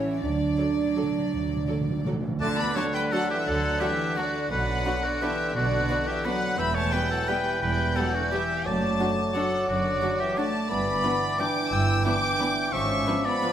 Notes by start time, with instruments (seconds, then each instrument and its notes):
Already playing: cello section E3, french horn section C#4, violin section C#5
0.21 double bass section D2, timpani D3, cello section F#3, french horn section D4, violin section D5
0.29 timpani D3
0.53 timpani D3
0.58 timpani D3, viola section F#3 A4, violin section D5
0.70 timpani D3
0.78 timpani D3
0.86 timpani D3
0.94 timpani D3, viola section F#3 A4, violin section D5
1.03 timpani D3
1.11 timpani D3
1.18 timpani D3
1.26 timpani D3
1.33 double bass section D2, timpani D3
1.41 timpani D3
1.48 timpani D3
1.56 timpani D3
1.65 timpani D3, viola section F#3 A4, violin section D5
1.73 timpani D3
1.81 timpani D3
1.89 timpani D3
1.97 timpani D3
2.05 timpani D3, viola section F#3 A4, violin section D5
2.13 timpani D3
2.20 timpani D3
2.28 timpani D3
2.41 double bass section D2, cello section D3, bassoon D3, french horn section A3, oboe D5, violin section A5, flute F#6
2.58 french horn section B3, oboe D5, violin section B5
2.76 viola section F#3 D4, french horn section A3, violin section F#4 A4 A5, oboe C#5
2.94 french horn section G3, oboe B4, violin section G5
3.11 french horn section F#3, viola section F#3 D4, violin section F#4 A4 F#5, oboe A4
3.30 french horn section E3, oboe G4, violin section E5
3.45 double bass section D2, cello section D3, french horn section F#3, oboe A4, violin section F#5
3.80 french horn section E3, viola section F#3 D4, violin section F#4 A4 E5, oboe G4
4.17 french horn section D3, viola section F#3 D4, violin section F#4 A4 D5, oboe F#4
4.50 double bass section B1, cello section B2, bassoon D3, french horn section F#3, oboe B4, violin section F#5, flute F#6
4.86 viola section B3 D4, violin section F#4 B4
5.04 french horn section D3, oboe F#4, violin section D5
5.22 french horn section E3, viola section B3 D4, violin section F#4 B4 E5, oboe G4
5.55 double bass section B1, cello section B2, french horn section D3, oboe F#4, violin section D5
5.89 viola section B3 D4, violin section F#4 B4
6.06 french horn section E3, oboe G4, violin section E5
6.25 french horn section F#3, viola section B3 D4, violin section F#4 B4 F#5, oboe B4
6.58 double bass section E1, cello section E2, bassoon E3, french horn section B3, oboe E5, violin section B5, flute G6
6.75 french horn section A3, oboe C#5, violin section A5
6.93 french horn section G3, viola section G3 B3, violin section G4 B4 G5, oboe B4
7.11 french horn section F#3, oboe A4, violin section F#5
7.28 french horn section G3, viola section G3 B3, violin section G4 B4 G5, oboe B4
7.62 double bass section E1, cello section E2, french horn section G3, oboe B4, violin section G5
7.96 french horn section F#3, viola section G3 B3, violin section G4 B4 F#5, oboe A4
8.13 french horn section D3, oboe F#4, violin section D5
8.31 french horn section E3, viola section G3 B3, oboe G4, violin section G4 B4 E5
8.66 double bass section F#1, cello section F#2, bassoon F#3, french horn section A3, oboe D5, violin section A5, flute D6
9.00 viola section F#3 D4, violin section D4 F#4
9.35 french horn section F#3, viola section F#3 D4, violin section D4 F#4 F#5, oboe A4
9.68 double bass section F#1, cello section F#2, french horn section D3, oboe F#4, violin section D5
10.02 viola section F#3 D4, violin section D4 F#4
10.20 french horn section E3, oboe G4, violin section E5
10.36 viola section F#3 D4, french horn section A3, violin section D4 F#4 A5, oboe D5
10.70 double bass section G1, cello section G2, bassoon E3, french horn section B3, oboe D5, violin section B5, flute D6
11.03 viola section E3 B3, violin section D4 B4
11.39 viola section E3 B3, french horn section D4, violin section D4 B4 D6, oboe G5
11.72 double bass section G1, cello section G2, french horn section E4, oboe G5, violin section E6
12.05 viola section E3 B3, french horn section D4, violin section D4 B4 D6, oboe G5
12.39 viola section E3 B3, violin section D4 B4
12.73 double bass section G#1, cello section G#2, bassoon F3, french horn section C#4, oboe E5, violin section C#6, flute D6
13.07 viola section F3 B3, violin section D4 B4
13.25 french horn section B3, oboe D5, violin section B5
13.43 viola section F3 B3, violin section D4 B4